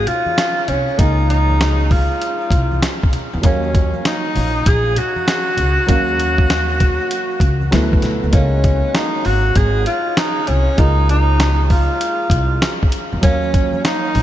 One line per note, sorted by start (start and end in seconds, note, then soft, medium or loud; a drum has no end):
0.00 0.94 G#3 medium
0.00 0.94 A#3 soft
0.00 0.95 D#4 soft
0.00 0.95 F5 medium
0.07 0.70 F4 loud
0.07 closed hi-hat medium
0.07 low conga medium
0.07 shaker soft
0.26 high conga medium
0.26 shaker soft
0.37 snare loud
0.37 closed hi-hat medium
0.37 shaker medium
0.57 shaker soft
0.68 0.86 C2 medium
0.68 1.00 C#4 medium
0.68 closed hi-hat medium
0.68 low conga medium
0.68 shaker soft
0.88 shaker soft
0.97 2.07 C#2 loud
0.97 3.38 G#3 medium
0.97 3.39 A#3 medium
0.97 1.29 D#4 medium
0.97 3.39 D#4 soft
0.97 3.40 G#4 medium
0.97 kick loud
0.97 closed hi-hat medium
0.97 shaker soft
1.19 shaker soft
1.29 1.93 D#4 medium
1.29 closed hi-hat medium
1.29 high conga soft
1.29 shaker soft
1.49 high conga medium
1.49 shaker soft
1.60 snare loud
1.60 closed hi-hat medium
1.60 shaker soft
1.80 shaker soft
1.91 3.13 F4 medium
1.91 kick medium
1.91 open hi-hat soft
1.91 low conga medium
1.91 shaker soft
2.10 shaker soft
2.21 closed hi-hat medium
2.21 shaker medium
2.41 shaker soft
2.51 2.79 C2 medium
2.51 kick medium
2.51 closed hi-hat medium
2.51 low conga medium
2.51 shaker soft
2.72 high conga medium
2.72 shaker soft
2.83 snare loud
2.83 closed hi-hat medium
2.83 shaker medium
3.02 kick medium
3.02 shaker soft
3.13 closed hi-hat medium
3.13 low conga medium
3.13 shaker soft
3.33 3.43 E2 loud
3.33 shaker soft
3.42 3.90 D#2 loud
3.42 5.83 F#3 medium
3.42 5.84 A#3 medium
3.42 5.85 C#4 soft
3.42 4.02 C#4 loud
3.42 5.85 F5 medium
3.42 kick loud
3.42 closed hi-hat medium
3.42 shaker medium
3.63 shaker soft
3.74 kick medium
3.74 closed hi-hat medium
3.74 high conga soft
3.74 shaker soft
3.94 high conga medium
3.94 shaker soft
4.05 4.69 D#4 medium
4.05 snare medium
4.05 closed hi-hat medium
4.05 shaker soft
4.25 shaker soft
4.35 4.63 A#1 medium
4.35 open hi-hat medium
4.35 low conga medium
4.35 shaker medium
4.55 shaker soft
4.65 4.94 A#1 loud
4.65 4.99 G#4 loud
4.65 kick loud
4.65 closed hi-hat medium
4.65 shaker medium
4.86 shaker soft
4.96 7.73 F#4 loud
4.96 closed hi-hat medium
4.96 low conga medium
4.96 shaker soft
5.16 high conga medium
5.16 shaker soft
5.27 snare loud
5.27 closed hi-hat medium
5.27 shaker medium
5.46 shaker soft
5.57 5.76 C#2 medium
5.57 closed hi-hat medium
5.57 low conga medium
5.57 shaker soft
5.77 shaker soft
5.86 6.96 D#2 loud
5.86 7.67 F#3 medium
5.86 7.68 A#3 medium
5.86 7.69 C#4 medium
5.86 7.69 F5 medium
5.86 kick loud
5.86 closed hi-hat medium
5.86 shaker medium
6.08 shaker soft
6.19 closed hi-hat medium
6.19 high conga medium
6.19 shaker soft
6.38 kick medium
6.38 high conga medium
6.38 shaker soft
6.50 snare loud
6.50 closed hi-hat medium
6.50 shaker medium
6.70 shaker soft
6.80 kick medium
6.80 closed hi-hat medium
6.80 low conga medium
6.80 shaker soft
7.00 shaker medium
7.10 closed hi-hat medium
7.10 shaker soft
7.31 shaker soft
7.40 7.69 C#2 medium
7.40 kick medium
7.40 closed hi-hat medium
7.40 shaker soft
7.61 high conga medium
7.61 shaker soft
7.71 8.19 D2 loud
7.71 8.33 F#3 medium
7.71 8.33 A3 medium
7.71 8.33 B3 medium
7.71 8.34 E4 medium
7.71 snare medium
7.71 closed hi-hat medium
7.71 shaker medium
7.92 kick medium
7.92 high conga medium
7.92 shaker soft
8.02 snare soft
8.02 closed hi-hat medium
8.02 high conga soft
8.02 low conga medium
8.02 shaker soft
8.23 8.33 D2 medium
8.23 shaker soft
8.31 8.80 C#2 loud
8.31 10.73 G#3 medium
8.31 10.74 A#3 medium
8.31 8.96 C#4 medium
8.31 10.74 D#4 soft
8.31 10.75 F5 medium
8.31 kick loud
8.31 closed hi-hat medium
8.64 kick medium
8.64 closed hi-hat medium
8.95 9.27 D#4 medium
8.95 snare loud
8.95 closed hi-hat medium
9.25 9.53 G#1 medium
9.25 9.57 F#4 loud
9.25 open hi-hat soft
9.55 9.84 G#1 medium
9.55 9.86 G#4 loud
9.55 kick medium
9.55 closed hi-hat loud
9.86 10.19 F4 medium
9.86 closed hi-hat medium
10.17 10.49 D#4 medium
10.17 snare loud
10.17 closed hi-hat medium
10.47 10.66 C2 medium
10.47 10.81 C#4 medium
10.47 closed hi-hat medium
10.76 11.86 C#2 loud
10.76 13.18 G#3 medium
10.76 13.19 A#3 medium
10.76 13.19 D#4 medium
10.76 11.09 D#4 loud
10.76 13.20 F4 medium
10.76 kick loud
10.76 closed hi-hat medium
11.09 11.66 D#4 medium
11.09 closed hi-hat medium
11.40 snare loud
11.40 closed hi-hat medium
11.70 12.89 F4 medium
11.70 kick medium
11.70 open hi-hat medium
12.01 closed hi-hat medium
12.30 12.58 C2 loud
12.30 kick medium
12.30 closed hi-hat medium
12.62 snare loud
12.62 closed hi-hat medium
12.83 kick medium
12.92 closed hi-hat medium
13.13 13.22 E2 loud
13.21 13.70 D#2 loud
13.21 14.23 F#3 medium
13.21 14.23 A#3 medium
13.21 13.80 C#4 loud
13.21 14.23 C#4 medium
13.21 14.23 F5 medium
13.21 kick loud
13.21 closed hi-hat loud
13.21 shaker soft
13.43 shaker soft
13.53 kick medium
13.53 closed hi-hat medium
13.53 high conga soft
13.53 shaker soft
13.73 high conga medium
13.73 shaker soft
13.84 14.23 D#4 loud
13.84 snare loud
13.84 closed hi-hat medium
13.84 shaker medium
14.04 shaker soft
14.15 14.23 A#1 medium
14.15 open hi-hat medium
14.15 low conga medium
14.15 shaker soft